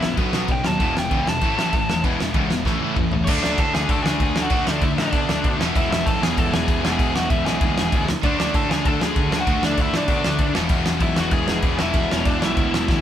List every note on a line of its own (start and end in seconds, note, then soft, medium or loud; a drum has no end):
0.00 0.17 A1 medium
0.00 0.16 E2 medium
0.00 0.15 B2 medium
0.00 0.16 E3 medium
0.00 0.17 G#3 medium
0.00 0.17 B3 loud
0.00 0.15 E4 medium
0.00 0.18 E4 loud
0.00 snare loud
0.16 0.32 B1 medium
0.16 0.31 B2 medium
0.16 0.78 B2 loud
0.16 0.79 D#3 medium
0.16 0.31 F#3 medium
0.16 0.79 F#3 medium
0.16 0.32 B3 loud
0.16 0.80 B3 loud
0.16 0.80 D#4 loud
0.16 kick loud
0.16 crash medium
0.32 0.48 B1 medium
0.32 0.47 B2 medium
0.32 0.47 F#3 loud
0.32 0.48 B3 loud
0.32 snare loud
0.48 0.63 B1 medium
0.48 0.62 B2 medium
0.48 0.63 F#3 medium
0.48 0.66 G5 loud
0.48 kick loud
0.48 crash medium
0.64 0.80 D#2 loud
0.64 0.78 B2 medium
0.64 0.78 F#3 medium
0.64 0.95 A5 medium
0.64 snare loud
0.79 0.94 E1 loud
0.79 0.94 E2 medium
0.79 0.94 B2 loud
0.79 1.41 E3 medium
0.79 0.94 E3 loud
0.79 1.41 G#3 loud
0.79 1.42 B3 loud
0.79 1.42 E4 loud
0.79 kick loud
0.79 crash medium
0.95 1.10 E1 loud
0.95 1.09 E2 medium
0.95 1.09 B2 medium
0.95 1.27 G5 loud
0.95 snare loud
1.10 1.25 C#2 medium
1.10 1.25 E2 loud
1.10 1.25 B2 loud
1.10 1.25 E3 loud
1.10 kick loud
1.10 crash medium
1.26 1.41 E1 medium
1.26 1.40 E2 medium
1.26 1.41 B2 medium
1.26 2.03 A5 loud
1.26 snare loud
1.41 1.56 A1 loud
1.41 2.02 A2 medium
1.41 1.56 A2 medium
1.41 2.01 E3 medium
1.41 1.57 E3 medium
1.41 1.57 A3 loud
1.41 2.03 A3 loud
1.41 2.04 C#4 loud
1.41 2.04 E4 loud
1.41 kick loud
1.41 crash medium
1.57 1.72 A1 medium
1.57 1.72 A2 loud
1.57 1.72 E3 medium
1.57 1.73 A3 loud
1.57 snare loud
1.73 1.87 A1 medium
1.73 1.87 A2 medium
1.73 1.88 E3 medium
1.73 kick loud
1.73 crash medium
1.89 2.03 E1 loud
1.89 2.03 A2 medium
1.89 2.03 E3 medium
1.89 snare loud
2.02 2.18 E1 loud
2.02 2.18 E2 medium
2.02 2.19 B2 loud
2.02 2.64 E3 loud
2.02 2.19 E3 loud
2.02 2.64 G#3 loud
2.02 2.65 B3 loud
2.02 2.66 E4 loud
2.02 kick loud
2.02 crash medium
2.19 2.33 E1 medium
2.19 2.33 E2 medium
2.19 2.34 B2 medium
2.19 snare loud
2.34 2.49 C#2 medium
2.34 2.49 E2 loud
2.34 2.49 B2 loud
2.34 2.50 E3 loud
2.34 kick loud
2.34 crash medium
2.50 2.64 E1 medium
2.50 2.64 E2 medium
2.50 2.64 B2 medium
2.50 snare loud
2.65 2.79 A1 medium
2.65 3.26 A2 medium
2.65 2.80 A2 medium
2.65 3.26 E3 loud
2.65 2.80 E3 loud
2.65 3.27 A3 loud
2.65 2.81 A3 loud
2.65 3.28 C#4 loud
2.65 3.28 E4 medium
2.65 kick loud
2.65 snare medium
2.80 2.95 A1 medium
2.80 2.95 A2 medium
2.80 2.96 E3 loud
2.80 2.96 A3 loud
2.80 high tom medium
2.96 3.11 A1 loud
2.96 3.11 A2 medium
2.96 3.11 E3 medium
2.96 kick loud
2.96 mid tom loud
3.12 3.26 E1 medium
3.12 3.26 A2 medium
3.12 3.27 E3 medium
3.12 floor tom medium
3.24 3.38 D2 loud
3.24 4.35 D3 medium
3.24 3.28 C#5 medium
3.24 kick loud
3.24 crash loud
3.24 crash medium
3.28 3.88 D3 medium
3.28 4.35 A3 loud
3.28 3.90 A3 loud
3.28 4.35 D4 loud
3.28 3.42 D4 medium
3.28 3.90 D4 loud
3.28 4.33 F#4 loud
3.28 3.42 D5 medium
3.43 3.54 D2 loud
3.43 3.58 D4 medium
3.43 3.59 D5 medium
3.43 snare loud
3.58 3.69 A2 medium
3.58 3.73 A4 medium
3.58 3.74 A5 loud
3.58 kick loud
3.58 crash medium
3.74 3.84 D2 loud
3.74 3.88 G#4 medium
3.74 3.89 G#5 loud
3.74 snare loud
3.89 4.00 D2 medium
3.89 4.49 D3 medium
3.89 4.50 A3 medium
3.89 4.51 D4 medium
3.89 4.02 A4 medium
3.89 4.03 A5 loud
3.89 kick loud
3.89 crash medium
4.03 4.15 D2 loud
4.03 4.40 G#4 medium
4.03 4.44 G#5 loud
4.03 snare loud
4.20 4.31 D2 loud
4.20 kick loud
4.20 crash medium
4.34 4.47 D2 loud
4.34 4.48 D3 medium
4.34 4.49 A3 medium
4.34 4.51 D4 medium
4.34 4.50 F#4 loud
4.34 snare loud
4.42 4.65 F#4 medium
4.42 4.67 F#5 loud
4.50 4.62 D2 loud
4.50 5.58 D3 medium
4.50 5.12 D3 medium
4.50 5.59 A3 loud
4.50 5.12 A3 loud
4.50 5.59 D4 loud
4.50 5.13 D4 loud
4.50 5.60 F#4 loud
4.50 kick loud
4.50 crash medium
4.66 4.78 D2 loud
4.66 4.82 D4 medium
4.66 4.82 D5 loud
4.66 snare loud
4.81 4.93 D2 medium
4.81 4.88 E4 medium
4.81 4.89 E5 loud
4.81 kick loud
4.81 crash medium
4.97 5.08 A2 loud
4.97 5.56 D4 medium
4.97 5.56 D5 loud
4.97 snare loud
5.12 5.23 B2 medium
5.12 5.59 D3 medium
5.12 5.59 A3 medium
5.12 5.60 D4 medium
5.12 kick loud
5.12 crash medium
5.29 5.40 D2 medium
5.29 snare loud
5.44 5.55 B2 loud
5.44 kick loud
5.44 crash medium
5.59 5.70 E1 loud
5.59 6.22 E2 loud
5.59 6.21 B2 loud
5.59 6.66 E3 loud
5.59 6.20 E3 loud
5.59 6.67 G#3 loud
5.59 6.68 B3 loud
5.59 6.68 E4 loud
5.59 snare loud
5.76 5.86 E1 loud
5.76 5.90 E4 medium
5.76 5.90 E5 loud
5.76 kick loud
5.76 crash medium
5.91 6.02 E1 loud
5.91 6.05 E4 medium
5.91 6.07 E5 loud
5.91 snare loud
6.06 6.17 B1 medium
6.06 6.20 A4 medium
6.06 6.22 A5 loud
6.06 kick loud
6.06 crash medium
6.21 6.33 E1 medium
6.21 6.82 E2 medium
6.21 6.83 B2 medium
6.21 6.82 E3 loud
6.21 6.37 G#4 medium
6.21 6.38 G#5 medium
6.21 snare loud
6.37 6.48 E1 loud
6.37 6.52 A4 medium
6.37 6.54 A5 loud
6.37 kick loud
6.37 crash medium
6.53 6.64 E1 medium
6.53 6.90 G#4 medium
6.53 6.90 G#5 loud
6.53 snare loud
6.67 6.79 E1 loud
6.67 6.81 E3 medium
6.67 6.83 G#3 medium
6.67 6.83 B3 medium
6.67 6.84 E4 medium
6.67 kick loud
6.67 crash medium
6.83 6.95 E1 loud
6.83 7.44 E2 loud
6.83 7.45 B2 loud
6.83 7.91 E3 loud
6.83 7.45 E3 loud
6.83 7.91 G#3 medium
6.83 7.92 B3 loud
6.83 7.92 E4 loud
6.83 snare loud
6.92 7.14 G#4 medium
6.92 7.16 G#5 loud
6.99 7.10 E1 loud
6.99 kick loud
6.99 crash medium
7.14 7.26 E1 medium
7.14 7.29 F#4 medium
7.14 7.30 F#5 medium
7.14 snare loud
7.30 7.41 E1 loud
7.30 7.44 E4 medium
7.30 7.46 E5 loud
7.30 kick loud
7.30 crash medium
7.45 7.56 B1 medium
7.45 8.08 E2 medium
7.45 8.08 B2 medium
7.45 8.07 E3 medium
7.45 8.04 G#4 medium
7.45 8.03 G#5 loud
7.45 snare loud
7.61 7.71 D2 loud
7.61 kick loud
7.61 crash medium
7.78 7.88 E1 medium
7.78 snare loud
7.92 8.14 D2 loud
7.92 8.07 E3 medium
7.92 8.07 G#3 medium
7.92 8.08 B3 medium
7.92 8.08 E4 medium
7.92 kick loud
7.92 crash medium
8.09 snare loud
8.23 8.34 D2 loud
8.23 8.84 D3 medium
8.23 9.31 D3 medium
8.23 9.32 A3 medium
8.23 8.85 A3 loud
8.23 8.39 D4 medium
8.23 8.86 D4 loud
8.23 9.32 D4 loud
8.23 9.31 F#4 loud
8.23 8.38 D5 medium
8.23 kick loud
8.23 crash medium
8.39 8.49 D2 loud
8.39 8.54 D4 medium
8.39 8.55 D5 medium
8.39 snare loud
8.54 8.65 A2 loud
8.54 8.69 A4 medium
8.54 8.70 A5 loud
8.54 kick loud
8.54 crash medium
8.69 8.80 D2 loud
8.69 8.85 G#4 medium
8.69 8.86 G#5 medium
8.69 snare loud
8.85 8.96 D2 loud
8.85 9.45 D3 medium
8.85 9.46 A3 medium
8.85 9.47 D4 loud
8.85 9.01 A4 medium
8.85 9.01 A5 loud
8.85 kick loud
8.85 crash medium
9.01 9.11 D2 medium
9.01 9.37 G#4 medium
9.01 9.41 G#5 loud
9.01 snare loud
9.16 9.27 D2 loud
9.16 kick loud
9.16 crash medium
9.31 9.42 D2 medium
9.31 9.46 D3 medium
9.31 9.47 A3 medium
9.31 9.47 D4 medium
9.31 9.46 F#4 loud
9.31 snare loud
9.41 9.62 F#4 medium
9.41 9.64 F#5 loud
9.46 9.58 D2 loud
9.46 10.07 D3 loud
9.46 10.53 D3 loud
9.46 10.08 A3 loud
9.46 10.55 A3 loud
9.46 10.09 D4 loud
9.46 10.55 D4 loud
9.46 kick loud
9.46 crash medium
9.50 10.56 F#4 loud
9.63 9.73 D2 loud
9.63 9.79 D4 medium
9.63 9.81 D5 medium
9.63 snare loud
9.77 9.88 D2 medium
9.77 9.95 E5 medium
9.77 kick loud
9.77 crash medium
9.82 9.94 E4 medium
9.94 10.04 A2 loud
9.94 10.53 D4 medium
9.94 10.53 D5 medium
9.94 snare loud
10.08 10.19 B2 loud
10.08 10.54 D3 medium
10.08 10.55 A3 medium
10.08 10.55 D4 medium
10.08 kick loud
10.08 crash medium
10.24 10.35 D2 loud
10.24 snare loud
10.38 10.50 D2 loud
10.38 kick loud
10.38 crash medium
10.53 10.66 E1 loud
10.53 11.19 E2 loud
10.53 11.16 B2 loud
10.53 11.61 E3 medium
10.53 11.16 E3 loud
10.53 11.62 G#3 loud
10.53 11.63 B3 loud
10.53 11.64 E4 loud
10.53 snare loud
10.69 10.81 E1 loud
10.69 kick loud
10.69 crash medium
10.86 10.98 E1 medium
10.86 snare loud
11.00 11.12 B1 loud
11.00 11.16 E4 medium
11.00 11.18 E5 loud
11.00 kick loud
11.00 crash medium
11.16 11.28 E1 loud
11.16 11.78 E2 medium
11.16 11.79 B2 medium
11.16 11.78 E3 loud
11.16 11.32 F#4 medium
11.16 11.33 F#5 medium
11.16 snare loud
11.31 11.43 E1 medium
11.31 11.76 G#4 medium
11.31 11.80 G#5 loud
11.31 kick loud
11.31 crash medium
11.48 11.60 E1 loud
11.48 snare loud
11.62 11.74 E1 medium
11.62 11.76 E3 medium
11.62 11.77 G#3 medium
11.62 11.79 B3 medium
11.62 11.79 E4 medium
11.62 kick loud
11.62 crash medium
11.77 11.90 E1 loud
11.77 12.41 E2 loud
11.77 12.41 B2 medium
11.77 12.86 E3 loud
11.77 12.41 E3 loud
11.77 12.87 G#3 loud
11.77 12.88 B3 loud
11.77 12.08 E4 medium
11.77 12.88 E4 loud
11.77 12.12 E5 medium
11.77 snare loud
11.94 12.05 E1 loud
11.94 kick loud
11.94 crash medium
12.11 12.22 E1 medium
12.11 12.25 C#4 medium
12.11 12.26 C#5 medium
12.11 snare loud
12.25 12.36 E1 loud
12.25 12.40 D4 medium
12.25 12.45 D5 medium
12.25 kick loud
12.25 crash medium
12.42 12.53 B1 medium
12.42 13.01 E2 medium
12.42 13.01 B2 medium
12.42 13.01 E3 medium
12.42 13.01 E4 medium
12.42 13.01 E5 medium
12.42 snare loud
12.57 12.68 D2 medium
12.57 kick loud
12.57 crash medium
12.74 12.85 E1 medium
12.74 snare loud
12.88 13.01 D2 medium
12.88 13.01 E3 medium
12.88 13.01 G#3 medium
12.88 13.01 B3 medium
12.88 13.01 E4 medium
12.88 kick loud
12.88 snare medium